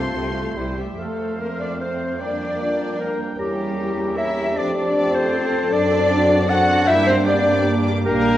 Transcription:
Already playing: C2 C3 A3 C4 F4 A4 C5 F5 A5 C6
0.14 C2 C3 C4 C5
0.35 A3 A4 F5
0.55 C2 C3 G3 C4 E4 C5
0.77 G3 A3 G4 E5
0.97 F2 F3 A3 A4 C5 F5
1.39 A#3 C4 A#4
1.59 D4 D5
1.78 A3 C4 C5 F5
2.19 G3 A#3 D4 A#4 D5 G5
2.60 F4
2.99 A#3 D4 A#4 G5
3.37 E2 G3 C#4 E4 G4 A#5
3.79 E4
4.16 C#4 E4 G4 E5 A#5
4.56 F2 F3 A3 C4 D4 A4 D5 A5
5.14 C4 C5
5.35 A4
5.71 F#2 F#3 C4 D4 D5 A5
6.13 F#4
6.48 C4 D4 F#4 F#5 A5
6.87 G2 G3 A#3 E4 G4 E5 G5 D6
7.07 C4 C5
7.26 A#3 C4 D4 D5 G5
7.66 A#3
8.04 A#1 G3 A#3 D4 A#4 G5

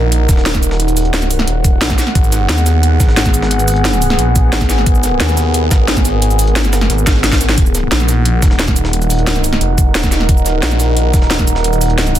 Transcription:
Already playing: A#1 D#4 A#4 F#5
0.12 closed hi-hat
0.29 D#1, kick, snare, closed hi-hat, cabasa
0.37 snare
0.46 snare, closed hi-hat
0.54 kick, snare, cabasa
0.63 D#1, closed hi-hat, cabasa
0.71 snare
0.80 closed hi-hat
0.88 closed hi-hat, cabasa
0.97 closed hi-hat, open hi-hat, cabasa
1.05 closed hi-hat
1.14 snare, closed hi-hat
1.22 snare, closed hi-hat, cabasa
1.31 closed hi-hat, open hi-hat, cabasa
1.39 snare
1.47 D#1, closed hi-hat
1.64 kick, closed hi-hat, cabasa
1.81 A#1, snare, closed hi-hat
1.90 kick, snare, cabasa
1.98 snare, closed hi-hat, cabasa
2.07 snare
2.15 G#1 B3 G#4, kick, closed hi-hat
2.24 G#4, cabasa
2.32 snare, closed hi-hat, cabasa
2.49 D#2, snare, closed hi-hat
2.58 snare, cabasa
2.66 snare, closed hi-hat, cabasa
2.83 closed hi-hat
3.00 G#1, kick, snare, closed hi-hat, cabasa
3.09 snare
3.17 snare, closed hi-hat
3.25 kick, snare, cabasa
3.34 G#1, closed hi-hat, cabasa
3.42 snare
3.51 closed hi-hat
3.59 closed hi-hat, cabasa
3.68 closed hi-hat, open hi-hat, cabasa
3.76 closed hi-hat
3.85 snare, closed hi-hat
3.93 snare, closed hi-hat, cabasa
4.02 closed hi-hat, open hi-hat, cabasa
4.10 snare
4.19 A#1, closed hi-hat
4.36 kick, closed hi-hat, cabasa
4.53 G#1, snare, closed hi-hat
4.61 kick, snare, cabasa
4.70 snare, closed hi-hat, cabasa
4.78 snare
4.86 G#1 A#4, kick, closed hi-hat
4.95 cabasa
5.03 snare, closed hi-hat, cabasa
5.20 D#2, snare, closed hi-hat
5.29 snare, cabasa
5.37 snare, closed hi-hat, cabasa
5.54 closed hi-hat
5.71 G#1, kick, snare, closed hi-hat, cabasa
5.88 snare, closed hi-hat
5.97 kick, snare, cabasa
6.05 G#1, snare, closed hi-hat, cabasa
6.22 closed hi-hat
6.31 closed hi-hat, cabasa
6.39 closed hi-hat, open hi-hat, cabasa
6.47 closed hi-hat
6.56 snare, closed hi-hat
6.64 G1, snare, closed hi-hat, cabasa
6.73 snare, closed hi-hat, open hi-hat, cabasa
6.81 snare
6.90 G#1, snare, closed hi-hat
6.98 cabasa
7.07 kick, snare, closed hi-hat, cabasa
7.15 snare
7.24 snare, closed hi-hat
7.32 kick, snare, closed hi-hat, cabasa
7.41 snare, closed hi-hat, cabasa
7.49 snare, closed hi-hat
7.58 D#1 D#4 F#5, kick, closed hi-hat
7.66 cabasa
7.75 snare, closed hi-hat, cabasa
7.82 A#4 F#5
7.92 A#1, snare, closed hi-hat
8.00 snare, cabasa
8.08 snare, closed hi-hat, cabasa
8.25 closed hi-hat
8.42 D#1, kick, snare, closed hi-hat, cabasa
8.51 snare
8.59 snare, closed hi-hat
8.68 kick, snare, cabasa
8.76 D#1, closed hi-hat, cabasa
8.85 snare
8.93 closed hi-hat
9.02 closed hi-hat, cabasa
9.10 closed hi-hat, open hi-hat, cabasa
9.19 closed hi-hat
9.27 snare, closed hi-hat
9.36 snare, closed hi-hat, cabasa
9.44 closed hi-hat, open hi-hat, cabasa
9.53 snare
9.61 F1, closed hi-hat
9.78 kick, closed hi-hat, cabasa
9.95 D#1, snare, closed hi-hat
10.03 kick, snare, cabasa
10.12 snare, closed hi-hat, cabasa
10.20 snare
10.29 D#1, kick, closed hi-hat
10.37 cabasa
10.46 snare, closed hi-hat, cabasa
10.63 A#1, snare, closed hi-hat
10.71 snare, cabasa
10.80 snare, closed hi-hat, cabasa
10.97 closed hi-hat
11.14 D#1, kick, snare, closed hi-hat, cabasa
11.22 snare
11.30 snare, closed hi-hat
11.39 kick, snare, cabasa
11.47 D#1, closed hi-hat, cabasa
11.56 snare
11.64 closed hi-hat
11.73 closed hi-hat, cabasa
11.81 closed hi-hat, open hi-hat, cabasa
11.90 closed hi-hat
11.98 snare, closed hi-hat
12.07 snare, closed hi-hat, cabasa
12.15 closed hi-hat, open hi-hat, cabasa

